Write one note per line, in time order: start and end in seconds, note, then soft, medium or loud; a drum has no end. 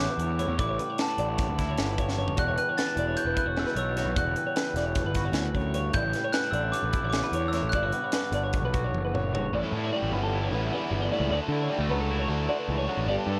0.00 0.39 E2 medium
0.00 1.18 D3 medium
0.00 0.79 G3 medium
0.00 0.59 D4 soft
0.00 0.39 E4 medium
0.00 0.36 D6 medium
0.10 0.19 B4 medium
0.18 0.46 E2 medium
0.18 0.38 C#5 medium
0.18 closed hi-hat medium
0.39 0.57 A2 medium
0.39 0.60 E4 medium
0.39 0.58 C#5 medium
0.39 closed hi-hat medium
0.48 0.57 E2 medium
0.58 0.77 A1 medium
0.58 1.18 A2 medium
0.58 1.58 E4 medium
0.58 0.68 D5 medium
0.58 1.00 D6 medium
0.58 kick loud
0.58 closed hi-hat medium
0.69 0.79 C#5 medium
0.79 2.56 G3 medium
0.79 0.90 B4 medium
0.79 closed hi-hat medium
0.90 0.99 C#5 medium
0.98 1.08 B3 medium
0.98 1.19 B4 medium
0.98 2.15 A5 medium
0.98 snare loud
0.98 closed hi-hat medium
1.08 2.38 D4 soft
1.18 1.45 A1 medium
1.18 2.94 D3 medium
1.18 1.29 D5 medium
1.18 closed hi-hat medium
1.29 1.49 C#5 medium
1.38 kick loud
1.38 snare soft
1.38 closed hi-hat medium
1.49 1.75 D2 medium
1.49 1.69 B4 medium
1.58 2.36 E4 medium
1.58 kick medium
1.58 snare soft
1.58 closed hi-hat medium
1.69 1.89 C#5 medium
1.78 2.34 G1 medium
1.78 1.98 A2 soft
1.78 snare medium
1.78 closed hi-hat medium
1.89 1.98 B4 medium
1.97 2.16 G2 medium
1.97 2.17 C#5 medium
1.97 kick medium
1.97 closed hi-hat medium
2.09 snare soft
2.16 2.35 F#2 medium
2.16 2.38 C#5 medium
2.28 floor tom medium
2.36 2.56 E1 medium
2.36 3.95 E2 medium
2.36 3.34 F#4 medium
2.36 2.48 D5 medium
2.36 2.57 F#6 medium
2.36 kick medium
2.36 closed hi-hat medium
2.48 2.57 C#5 medium
2.56 4.36 G3 soft
2.56 2.69 B4 medium
2.56 2.78 F#6 medium
2.56 closed hi-hat medium
2.69 2.78 C#5 medium
2.78 2.87 B3 medium
2.78 2.98 B4 medium
2.78 3.14 A6 medium
2.78 snare loud
2.78 closed hi-hat medium
2.87 4.16 D4 soft
2.95 3.15 E1 medium
2.95 4.20 E3 medium
2.95 3.07 D5 medium
2.95 closed hi-hat medium
3.08 3.26 C#5 medium
3.17 3.37 G6 loud
3.17 closed hi-hat medium
3.25 3.35 E1 medium
3.25 3.47 B4 medium
3.34 3.46 E4 medium
3.34 3.58 F#6 medium
3.34 kick medium
3.34 closed hi-hat medium
3.46 3.64 E1 medium
3.46 3.96 F#4 medium
3.46 3.66 C#5 medium
3.57 4.14 B2 medium
3.57 3.68 E6 medium
3.57 snare loud
3.57 closed hi-hat medium
3.66 3.76 B4 medium
3.76 4.03 B1 medium
3.76 3.95 C#5 medium
3.76 4.18 E6 medium
3.76 closed hi-hat medium
3.96 4.15 E2 medium
3.96 4.14 F#4 medium
3.96 4.17 C#5 medium
3.96 snare soft
3.96 closed hi-hat medium
4.04 4.14 B1 medium
4.16 4.34 E1 medium
4.16 5.32 E2 medium
4.16 5.15 F#4 medium
4.16 4.27 D5 medium
4.16 4.92 F#6 medium
4.16 kick loud
4.16 closed hi-hat medium
4.27 4.36 C#5 medium
4.36 6.16 G3 medium
4.36 4.46 B4 medium
4.36 closed hi-hat medium
4.47 4.56 C#5 medium
4.56 5.97 D4 soft
4.56 4.76 B4 medium
4.56 snare loud
4.56 closed hi-hat medium
4.74 5.02 E1 medium
4.74 5.93 E3 medium
4.74 4.86 D5 medium
4.74 snare soft
4.74 closed hi-hat medium
4.86 5.06 C#5 medium
4.95 kick loud
4.95 snare soft
4.95 closed hi-hat medium
5.04 5.32 G1 medium
5.04 5.25 B4 medium
5.15 5.93 F#4 medium
5.15 kick medium
5.15 snare soft
5.15 closed hi-hat medium
5.25 5.45 C#5 medium
5.32 5.89 D2 medium
5.32 5.54 E2 medium
5.32 snare medium
5.32 closed hi-hat medium
5.45 5.55 B4 medium
5.54 5.75 F#2 medium
5.54 5.73 C#5 medium
5.54 kick medium
5.54 closed hi-hat medium
5.74 5.95 G2 medium
5.74 5.95 C#5 medium
5.74 closed hi-hat medium
5.93 6.13 A1 medium
5.93 6.54 A2 medium
5.93 6.92 E4 medium
5.93 6.04 D5 medium
5.93 6.35 G6 loud
5.93 kick loud
5.93 closed hi-hat medium
6.04 6.15 C#5 medium
6.13 7.92 G3 medium
6.13 6.24 B4 medium
6.13 snare soft
6.13 closed hi-hat medium
6.24 6.33 C#5 medium
6.33 6.44 B3 medium
6.33 6.53 B4 medium
6.33 6.54 F#6 medium
6.33 snare loud
6.33 closed hi-hat medium
6.44 7.73 D4 medium
6.51 6.72 A1 medium
6.51 8.32 D3 medium
6.51 6.64 D5 medium
6.51 6.71 E6 medium
6.51 closed hi-hat medium
6.64 6.84 C#5 medium
6.72 7.09 D6 medium
6.72 closed hi-hat medium
6.83 6.93 A1 medium
6.83 7.05 B4 medium
6.93 7.52 E4 medium
6.93 kick medium
6.93 closed hi-hat medium
7.02 7.21 A1 medium
7.02 7.23 C#5 medium
7.10 7.54 E2 medium
7.10 7.53 D6 medium
7.10 snare medium
7.10 closed hi-hat medium
7.24 7.34 B4 medium
7.32 7.60 E2 medium
7.32 7.53 C#5 medium
7.32 closed hi-hat medium
7.48 7.73 A2 medium
7.48 7.72 E6 medium
7.53 7.72 E4 medium
7.53 7.74 C#5 medium
7.53 snare soft
7.53 closed hi-hat medium
7.63 7.72 A1 medium
7.70 7.91 G1 medium
7.70 8.93 G2 medium
7.70 7.83 E4 medium
7.70 9.07 F#6 medium
7.70 kick medium
7.70 closed hi-hat medium
7.75 7.85 D5 medium
7.83 8.72 F#4 medium
7.83 7.94 C#5 medium
7.93 9.49 B3 medium
7.93 8.04 B4 medium
7.93 closed hi-hat medium
8.04 8.14 C#5 medium
8.12 9.49 D4 medium
8.12 8.34 B4 medium
8.12 snare loud
8.12 closed hi-hat medium
8.32 8.60 G1 medium
8.32 10.12 D3 medium
8.32 8.43 D5 medium
8.32 closed hi-hat medium
8.44 8.63 C#5 medium
8.53 kick loud
8.53 closed hi-hat medium
8.62 8.90 B1 medium
8.62 8.84 B4 medium
8.73 9.33 F#4 medium
8.73 kick medium
8.73 closed hi-hat medium
8.84 9.04 C#5 medium
8.93 9.48 F#1 loud
8.93 high tom medium
9.05 9.14 B4 medium
9.14 9.33 C#5 medium
9.14 mid tom medium
9.34 9.51 G2 medium
9.34 9.51 F#4 medium
9.34 9.53 C#5 medium
9.34 floor tom medium
9.53 9.62 A1 loud
9.53 9.91 A2 medium
9.53 10.12 A2 medium
9.53 9.94 E3 medium
9.53 9.76 G3 medium
9.53 9.74 C#4 loud
9.53 9.72 E4 loud
9.53 9.64 D5 loud
9.64 9.84 A4 medium
9.72 9.90 A2 medium
9.72 9.95 C#4 medium
9.72 9.96 E4 medium
9.72 9.84 E4 medium
9.77 9.93 G3 medium
9.84 10.32 F#4 soft
9.84 9.92 C#5 medium
9.93 10.32 A2 medium
9.93 10.70 E3 loud
9.93 10.15 G3 loud
9.93 11.32 G3 medium
9.93 10.13 C#4 loud
9.93 10.13 E4 loud
9.93 10.13 D5 medium
10.03 10.11 A1 medium
10.12 10.48 G1 medium
10.12 11.90 D3 medium
10.12 10.52 B3 medium
10.12 10.52 C#4 medium
10.12 10.50 E4 medium
10.12 10.22 B4 medium
10.16 10.54 G3 medium
10.23 10.43 A4 medium
10.35 10.73 E4 medium
10.43 10.53 C#5 medium
10.51 10.69 A1 medium
10.51 10.93 B3 medium
10.51 10.72 C#4 medium
10.51 10.73 E4 medium
10.51 10.73 B4 medium
10.55 10.70 G3 medium
10.70 11.12 E2 medium
10.70 11.11 E3 medium
10.70 11.11 G3 medium
10.70 11.12 C#4 medium
10.70 11.13 E4 medium
10.70 10.83 D5 medium
10.75 11.51 E4 soft
10.83 11.02 B4 medium
10.91 11.09 G1 medium
10.91 11.32 B3 medium
11.02 11.11 D5 medium
11.10 11.29 A2 loud
11.10 11.31 A2 medium
11.10 11.29 E3 medium
11.10 11.30 G3 medium
11.10 11.30 C#4 medium
11.10 11.31 E4 loud
11.10 11.30 D5 medium
11.20 11.29 C#2 medium
11.30 11.39 D2 loud
11.30 11.68 D3 medium
11.30 11.52 A3 loud
11.30 11.51 D4 medium
11.30 11.50 F#4 loud
11.30 11.41 D5 loud
11.41 11.61 A4 medium
11.48 11.67 D3 medium
11.48 11.71 D4 medium
11.48 12.10 E4 medium
11.48 11.72 F#4 medium
11.53 11.70 A3 medium
11.61 11.70 C#5 medium
11.69 12.09 D3 medium
11.69 11.80 G3 medium
11.69 11.91 A3 medium
11.69 11.90 D4 loud
11.69 11.88 F#4 loud
11.69 11.90 D5 medium
11.79 11.88 D2 medium
11.79 13.09 A3 soft
11.88 12.25 C#2 medium
11.88 12.48 F#3 medium
11.88 12.32 A3 medium
11.88 12.01 B3 medium
11.88 12.30 D4 medium
11.88 12.28 F#4 medium
11.88 12.00 B4 medium
12.00 12.30 C#4 medium
12.00 12.19 A4 medium
12.11 13.09 E4 medium
12.19 12.29 C#5 medium
12.28 12.46 D2 medium
12.28 12.49 D4 medium
12.28 12.50 F#4 medium
12.28 12.49 A4 medium
12.32 12.48 A3 medium
12.47 12.84 D3 medium
12.47 12.68 D3 medium
12.47 12.87 A3 medium
12.47 12.88 D4 medium
12.47 12.89 F#4 medium
12.47 12.58 D5 medium
12.59 12.77 B4 medium
12.68 12.86 C#2 medium
12.68 12.88 E3 medium
12.78 12.87 C#5 medium
12.86 13.06 D3 medium
12.86 13.08 F#3 medium
12.86 13.07 A3 medium
12.86 13.08 D4 medium
12.86 13.08 C#5 medium
12.90 13.09 F#4 medium
12.97 13.06 A1 medium
13.06 13.16 G1 loud
13.06 13.40 G2 medium
13.06 13.40 G3 loud
13.06 13.29 B3 medium
13.06 13.28 D4 loud
13.06 13.26 G4 medium
13.06 13.17 D5 loud
13.18 13.39 A4 medium
13.27 13.40 G2 medium
13.27 13.40 B3 medium
13.27 13.40 D4 medium
13.27 13.40 G4 medium
13.27 13.40 A4 medium